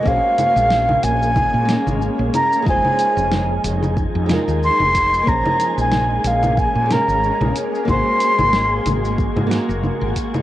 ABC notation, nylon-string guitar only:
X:1
M:4/4
L:1/8
Q:"Swing 16ths" 1/4=92
K:Bbm
V:1 name="Nylon-string guitar"
[B,DAc]4- [B,DAc] [B,DAB]3 | [A,EFc]4- [A,EFc] [A,EFB]3 | [B,DAc]4- [B,DAc] [B,DAB]3 | [B,GAc]4- [B,GAc] [B,GAB]3 |]